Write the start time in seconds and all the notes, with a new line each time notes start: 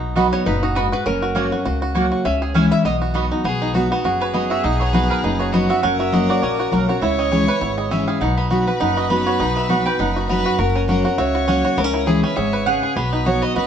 Already playing: B1 B2 D#4 F#4
0.16 F#3 B3 D#4 F#4 D#5 B5
0.33 B3 C#5
0.46 F#1 A#2 D#4 B4
0.63 D#4 F#4
0.75 G#2 B3 F#4 B4 D#5 B5
0.92 F#4 B4
1.06 F#1 F#2 C#4 A#4
1.22 F#4
1.35 F#3 A#3 C#4 F#4 C#5 F#5
1.51 C#4 F#4
1.65 C#2 C#3 F#4
1.82 F#4
1.95 F#3 A#3 C#4 F#4 C#5 F#5
2.12 F#4
2.25 C#2 C#3 C#4 E5
2.42 G#4
2.54 E3 G#3 C#4 E4 G#4 C#5 E5 G#5
2.71 E4 E5
2.85 B1 B2 B3 D#5
3.02 F#4
3.14 F#3 B3 D#4 F#4 D#5 B5
3.32 D#4
3.44 B1 B2 B3 G#4
3.62 D#4
3.74 F#3 B3 D#4 F#4
3.90 B3 D#4 F#4
4.04 F#1 F#2 F#4 G#4
4.20 B4 C#5
4.33 F#3 B3 D#4 F#4 D#5
4.50 F#4 E5
4.63 B1 B2 D#4 D#5
4.80 B3 C#5
4.93 F#3 B3 D#4 F#4 B4
5.10 A#4 B4
5.23 F#1 F#2 D#4 B4
5.39 F#4 C#5
5.53 F#3 B3 D#4 F#4 D#5
5.69 D#4 F#4 E5
5.83 F#1 F#2 C#4 A#4 F#5
5.99 F#4 E5
6.12 F#3 A#3 C#4 F#4 D#5
6.29 F#4 D5
6.42 A#1 C#3 C#4 C#5
6.58 F#4
6.72 B1 F#3 A#3 C#4 F#4 A#4
6.88 C#4 F#4 C#5
7.01 C#2 C#3 E4 C#5 E5
7.18 C#4 D#5
7.31 E3 G#3 C#4 E4 G#4 C#5
7.47 C#4 E4 B4
7.61 G#1 G#2 E4 C#5
7.77 G#4 D#5
7.91 E3 G#3 C#4 E4 E5
8.07 G#4 F5
8.21 B1 B2 D#4 B4 F#5
8.37 B3 B5
8.50 F#3 B3 D#4 F#4
8.67 D#4 F#4 B4
8.80 F#1 F#2 D#4 F#5
8.96 F#4 D#5
9.10 F#3 B3 D#4 F#4 B4
9.26 F#4 C#5
9.40 B1 B2 D#4 D#5
9.56 B3 E5
9.69 F#3 B3 D#4 F#4 F#5
9.85 D#4 F#4 B4 G5
9.99 F#1 F#2 D#4 F#5
10.16 F#4
10.29 F#3 B3 D#4 F#4 B4
10.46 F#4
10.59 F#1 F#2 F#4 A#4
10.76 C#4
10.88 F#3 A#3 C#4 F#4 A#4
11.04 C#4 F#4
11.18 C#2 C#3 F#4 C#5 E5
11.35 F#4
11.48 F#3 A#3 C#4 F#4 F#5
11.65 F#4
11.77 C#2 C#3 B3 A#4
11.84 C#4
11.94 E4
12.06 E3 G#3 C#4 E4 G#4
12.23 C#4 E4 B4
12.36 G#1 G#2 G#4 C#5 E5
12.53 B4
12.66 C#3 C#4 G#4 F#5
12.83 G#4
12.96 B1 B2 B3 B4
13.13 D#4
13.25 F#3 B3 D#4 F#4 C#5
13.42 B3 D#5
13.56 F#1 F#2 F#4 B4 D#5